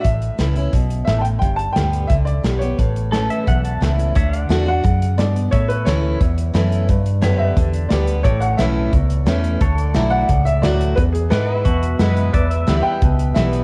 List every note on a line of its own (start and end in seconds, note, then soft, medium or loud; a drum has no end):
0.01 0.69 A2 medium
0.01 1.03 E5 medium
0.01 kick medium
0.01 closed hi-hat medium
0.05 0.29 A1 medium
0.22 closed hi-hat soft
0.38 0.68 C#2 medium
0.38 0.55 E3 soft
0.38 0.55 A3 medium
0.38 0.56 C#4 medium
0.38 0.55 E4 medium
0.38 snare medium
0.38 closed hi-hat medium
0.56 0.74 C#4 soft
0.56 0.72 E4 medium
0.56 closed hi-hat soft
0.73 1.02 B1 medium
0.73 1.06 B2 medium
0.73 kick medium
0.73 closed hi-hat medium
0.90 closed hi-hat medium
1.05 1.36 A1 medium
1.05 1.40 A2 medium
1.05 1.19 E5 medium
1.05 snare medium
1.05 closed hi-hat medium
1.19 1.26 G5 medium
1.19 1.24 A5 medium
1.25 closed hi-hat medium
1.39 1.66 G1 medium
1.39 2.07 G2 medium
1.39 1.58 G5 medium
1.39 kick medium
1.39 closed hi-hat medium
1.56 1.73 A5 medium
1.56 closed hi-hat medium
1.73 2.05 D2 medium
1.73 2.08 D3 soft
1.73 2.09 G3 medium
1.73 2.09 G5 medium
1.73 snare loud
1.73 closed hi-hat medium
1.77 2.09 B3 soft
1.77 2.09 G4 medium
1.93 closed hi-hat medium
2.08 2.39 C#2 medium
2.08 2.43 D3 medium
2.08 2.12 E5 medium
2.08 kick medium
2.08 closed hi-hat medium
2.25 2.61 D5 medium
2.25 closed hi-hat medium
2.44 2.73 B1 medium
2.44 2.60 D3 medium
2.44 2.61 G3 soft
2.44 2.61 B3 soft
2.44 2.60 G4 medium
2.44 snare loud
2.44 closed hi-hat medium
2.59 2.78 G4 medium
2.59 3.76 C#5 medium
2.59 closed hi-hat medium
2.63 2.79 B3 soft
2.79 3.27 A1 medium
2.79 3.44 A2 medium
2.79 kick medium
2.79 closed hi-hat medium
2.96 closed hi-hat medium
3.12 3.45 E3 medium
3.12 3.46 A3 medium
3.12 3.46 C#4 medium
3.12 3.46 E4 medium
3.12 3.29 A4 medium
3.12 snare loud
3.12 closed hi-hat medium
3.30 3.47 E5 medium
3.30 closed hi-hat medium
3.47 3.76 B1 medium
3.47 4.12 E2 medium
3.47 3.64 F#5 medium
3.47 kick medium
3.47 closed hi-hat medium
3.64 3.81 A5 medium
3.64 closed hi-hat medium
3.80 4.10 C#2 medium
3.80 4.13 E3 soft
3.80 4.14 A3 soft
3.80 4.14 C#4 medium
3.80 4.14 E4 soft
3.80 snare loud
3.80 closed hi-hat medium
3.99 closed hi-hat medium
4.15 4.49 D2 medium
4.15 4.48 D3 medium
4.15 4.36 C#5 medium
4.15 4.41 E5 medium
4.15 kick loud
4.15 closed hi-hat medium
4.33 5.51 D5 medium
4.33 closed hi-hat medium
4.41 5.51 F#5 medium
4.49 4.82 E2 medium
4.49 4.65 D3 medium
4.49 4.66 A3 medium
4.49 4.66 D4 medium
4.49 4.65 F#4 medium
4.49 snare loud
4.49 closed hi-hat medium
4.66 4.84 D4 medium
4.66 4.82 F#4 medium
4.66 5.15 F#5 loud
4.83 5.17 F#2 medium
4.83 5.16 C#3 medium
4.83 kick loud
4.83 closed hi-hat medium
5.02 closed hi-hat medium
5.18 5.51 G2 medium
5.18 5.50 B2 medium
5.18 5.53 D5 medium
5.18 snare loud
5.18 closed hi-hat medium
5.36 closed hi-hat medium
5.51 6.17 A2 medium
5.51 5.85 A2 medium
5.51 5.67 C#5 medium
5.51 6.87 C#5 medium
5.51 6.87 E5 medium
5.51 kick loud
5.51 closed hi-hat medium
5.68 5.86 B4 medium
5.68 closed hi-hat medium
5.85 6.19 D2 medium
5.85 6.18 E3 medium
5.85 6.19 A3 medium
5.85 6.19 C#4 medium
5.85 6.20 E4 medium
5.85 6.17 C#5 medium
5.85 snare loud
5.85 closed hi-hat medium
6.21 6.85 E2 medium
6.21 6.54 E2 medium
6.21 kick loud
6.21 closed hi-hat medium
6.38 closed hi-hat medium
6.54 6.87 F#2 loud
6.54 6.86 E3 medium
6.54 6.87 A3 medium
6.54 6.87 C#4 medium
6.54 6.87 E4 medium
6.54 snare loud
6.54 closed hi-hat medium
6.72 closed hi-hat medium
6.88 7.53 G2 loud
6.88 7.22 G2 medium
6.88 kick loud
6.88 closed hi-hat medium
7.06 closed hi-hat medium
7.21 7.55 F#2 medium
7.21 7.54 D3 medium
7.21 7.55 B3 loud
7.21 7.56 G4 medium
7.21 7.47 C#5 medium
7.21 7.48 E5 medium
7.21 snare loud
7.21 closed hi-hat medium
7.38 7.91 E5 medium
7.47 8.24 B4 medium
7.47 8.24 D5 medium
7.57 7.90 E2 medium
7.57 7.89 D3 medium
7.57 kick loud
7.57 closed hi-hat medium
7.73 closed hi-hat medium
7.89 8.24 D2 medium
7.89 8.23 D3 medium
7.89 8.23 G3 medium
7.89 8.24 B3 medium
7.89 8.25 D5 medium
7.89 snare loud
7.89 closed hi-hat medium
7.93 8.24 G4 medium
8.08 closed hi-hat medium
8.23 8.58 A1 medium
8.23 8.90 A2 medium
8.23 9.60 A4 medium
8.23 8.41 C#5 medium
8.23 8.45 D5 medium
8.23 kick loud
8.23 closed hi-hat medium
8.40 8.59 F#5 loud
8.40 closed hi-hat medium
8.45 9.60 C#5 medium
8.57 8.92 B1 medium
8.57 8.91 E3 medium
8.57 8.91 A3 medium
8.57 8.92 C#4 medium
8.57 8.92 E4 medium
8.57 8.90 E5 medium
8.57 snare loud
8.57 closed hi-hat medium
8.93 9.26 C#2 medium
8.93 9.58 E2 medium
8.93 kick loud
8.93 closed hi-hat medium
9.10 closed hi-hat medium
9.26 9.60 E2 medium
9.26 9.59 E3 medium
9.26 9.59 A3 medium
9.26 9.60 C#4 medium
9.26 9.60 E4 medium
9.26 snare loud
9.26 closed hi-hat medium
9.44 closed hi-hat medium
9.61 9.94 D2 medium
9.61 10.26 D3 medium
9.61 10.96 A4 medium
9.61 9.82 C#5 medium
9.61 kick loud
9.61 closed hi-hat medium
9.78 10.97 D5 medium
9.78 closed hi-hat medium
9.94 10.28 B1 medium
9.94 10.27 F#3 medium
9.94 10.27 A3 medium
9.94 10.28 E4 medium
9.94 10.28 F#4 medium
9.94 snare loud
9.94 closed hi-hat medium
10.11 10.43 F#5 loud
10.29 10.62 C#2 medium
10.29 10.94 A2 medium
10.29 kick loud
10.29 closed hi-hat medium
10.45 10.63 E5 loud
10.45 closed hi-hat medium
10.62 10.96 D2 medium
10.62 10.96 F#3 medium
10.62 10.96 A3 medium
10.62 10.96 E4 medium
10.62 10.97 F#4 medium
10.62 10.94 D5 medium
10.62 snare loud
10.62 closed hi-hat medium
10.81 closed hi-hat medium
10.96 11.62 E2 medium
10.96 11.31 E2 medium
10.96 11.01 B4 medium
10.96 kick loud
10.96 closed hi-hat medium
11.13 11.29 G#4 medium
11.13 closed hi-hat medium
11.30 11.64 G#2 medium
11.30 11.63 E3 medium
11.30 11.64 G#3 medium
11.30 11.64 B3 medium
11.30 11.65 E4 medium
11.30 11.56 A4 medium
11.30 11.62 B4 medium
11.30 11.57 D5 medium
11.30 snare loud
11.30 closed hi-hat medium
11.56 12.32 B4 medium
11.56 12.33 E5 medium
11.65 11.99 E2 medium
11.65 12.30 B2 medium
11.65 11.98 F#4 medium
11.65 kick loud
11.65 closed hi-hat medium
11.83 closed hi-hat medium
11.99 12.33 F#2 medium
11.99 12.32 E3 medium
11.99 12.32 G#3 medium
11.99 12.33 B3 medium
11.99 12.33 E4 medium
11.99 12.33 B4 medium
11.99 snare loud
11.99 closed hi-hat medium
12.17 closed hi-hat medium
12.33 12.99 E2 medium
12.33 12.67 E2 medium
12.33 13.64 B4 medium
12.33 12.50 D5 medium
12.33 13.64 E5 medium
12.33 kick loud
12.33 closed hi-hat medium
12.50 12.75 E5 medium
12.50 closed hi-hat medium
12.67 12.84 D2 medium
12.67 13.00 E3 medium
12.67 13.00 G3 medium
12.67 13.01 B3 medium
12.67 13.01 E4 medium
12.67 snare loud
12.67 closed hi-hat medium
12.82 13.36 G5 loud
13.02 13.35 C#2 medium
13.02 13.64 B2 medium
13.02 kick loud
13.02 closed hi-hat medium
13.19 closed hi-hat medium
13.34 13.64 B1 medium
13.34 13.64 E3 medium
13.34 13.64 G3 medium
13.34 13.64 B3 medium
13.34 13.64 E4 medium
13.34 13.64 E5 medium
13.34 snare loud
13.34 closed hi-hat medium
13.53 closed hi-hat medium